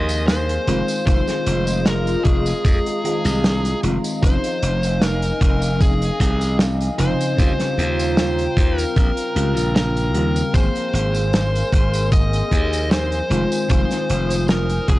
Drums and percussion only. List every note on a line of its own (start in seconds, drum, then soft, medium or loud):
0.09 closed hi-hat soft
0.09 tambourine medium
0.28 snare loud
0.28 closed hi-hat medium
0.28 tambourine soft
0.49 closed hi-hat medium
0.49 tambourine soft
0.68 closed hi-hat medium
0.88 closed hi-hat medium
0.88 tambourine medium
1.07 kick loud
1.07 closed hi-hat medium
1.07 tambourine soft
1.28 snare soft
1.28 closed hi-hat medium
1.28 tambourine soft
1.46 closed hi-hat loud
1.67 closed hi-hat medium
1.67 tambourine medium
1.86 snare loud
1.86 closed hi-hat medium
1.86 tambourine soft
2.07 closed hi-hat medium
2.07 tambourine soft
2.25 kick loud
2.25 closed hi-hat medium
2.46 closed hi-hat medium
2.46 tambourine medium
2.65 kick loud
2.65 closed hi-hat medium
2.65 tambourine soft
2.86 closed hi-hat medium
2.86 tambourine soft
3.05 closed hi-hat loud
3.25 closed hi-hat medium
3.25 tambourine medium
3.44 snare loud
3.44 closed hi-hat medium
3.44 tambourine soft
3.65 closed hi-hat medium
3.65 tambourine soft
3.83 closed hi-hat medium
4.04 closed hi-hat medium
4.04 tambourine medium
4.23 kick loud
4.23 closed hi-hat medium
4.23 tambourine soft
4.44 closed hi-hat medium
4.44 tambourine soft
4.62 closed hi-hat loud
4.83 closed hi-hat medium
4.83 tambourine medium
5.01 snare loud
5.01 closed hi-hat medium
5.01 tambourine soft
5.22 closed hi-hat medium
5.22 tambourine soft
5.41 kick loud
5.41 closed hi-hat loud
5.62 closed hi-hat medium
5.62 tambourine medium
5.81 kick loud
5.81 closed hi-hat medium
5.81 tambourine soft
6.02 closed hi-hat medium
6.02 tambourine soft
6.20 kick medium
6.20 closed hi-hat loud
6.41 closed hi-hat medium
6.41 tambourine medium
6.59 snare loud
6.59 closed hi-hat medium
6.59 tambourine soft
6.80 closed hi-hat medium
6.80 tambourine soft
6.98 closed hi-hat loud
7.20 closed hi-hat medium
7.20 tambourine medium
7.38 kick loud
7.38 closed hi-hat medium
7.38 tambourine soft
7.59 snare soft
7.59 closed hi-hat medium
7.59 tambourine soft
7.79 closed hi-hat medium
7.99 closed hi-hat medium
7.99 tambourine medium
8.17 snare loud
8.17 closed hi-hat medium
8.17 tambourine soft
8.38 closed hi-hat medium
8.38 tambourine soft
8.57 kick loud
8.57 closed hi-hat loud
8.78 closed hi-hat medium
8.78 tambourine medium
8.96 kick loud
8.96 closed hi-hat medium
8.96 tambourine soft
9.17 closed hi-hat medium
9.17 tambourine soft
9.36 closed hi-hat medium
9.57 closed hi-hat medium
9.57 tambourine medium
9.76 snare loud
9.76 closed hi-hat medium
9.76 tambourine soft
9.97 closed hi-hat medium
9.97 tambourine soft
10.15 closed hi-hat loud
10.36 closed hi-hat medium
10.36 tambourine medium
10.54 kick loud
10.54 closed hi-hat medium
10.54 tambourine soft
10.75 closed hi-hat soft
10.75 tambourine soft
10.95 closed hi-hat loud
11.14 closed hi-hat medium
11.14 tambourine medium
11.33 snare loud
11.33 closed hi-hat medium
11.33 tambourine soft
11.55 closed hi-hat soft
11.55 tambourine soft
11.73 kick loud
11.73 closed hi-hat loud
11.94 closed hi-hat medium
11.94 tambourine medium
12.12 kick loud
12.12 closed hi-hat medium
12.12 tambourine soft
12.33 closed hi-hat soft
12.33 tambourine soft
12.51 kick medium
12.51 closed hi-hat medium
12.73 closed hi-hat soft
12.73 tambourine medium
12.91 snare loud
12.91 closed hi-hat medium
12.91 tambourine soft
13.12 closed hi-hat medium
13.12 tambourine soft
13.31 closed hi-hat medium
13.52 closed hi-hat medium
13.52 tambourine medium
13.69 kick loud
13.69 closed hi-hat medium
13.69 tambourine soft
13.91 snare soft
13.91 closed hi-hat medium
13.91 tambourine soft
14.10 closed hi-hat medium
14.30 closed hi-hat medium
14.30 tambourine medium
14.48 snare loud
14.48 closed hi-hat medium
14.48 tambourine soft
14.69 closed hi-hat medium
14.69 tambourine soft
14.88 kick loud
14.88 closed hi-hat medium